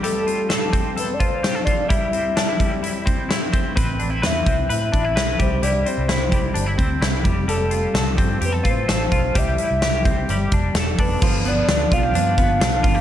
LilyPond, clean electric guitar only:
\new Staff \with { instrumentName = "Clean electric guitar" } { \time 4/4 \key c \major \tempo 4 = 129 <g a'>8 f'8 a'8 c'8 a'8 f'8 g'16 a'16 f'8 | <g e'>8 c'8 d'16 e'16 g8 e'8 c'8 e'8 c'8 | <c' b'>8 d'16 e'16 b'8 c'8 b'8 d'16 e'16 b'8 g8 | <g e'>8 c'8 e'8 g8 d'16 e'16 c'8 e'8 g8 |
<g a'>8 f'8 a'8 c'8 g'16 a'16 f'8 a'8 f'8 | <g g'>8 e'8 g'8 c'8 g8 d'8 a'8 d'8 | f8 b8 d'8 f'16 g'16 d'8 b8 d'8 f'16 g'16 | }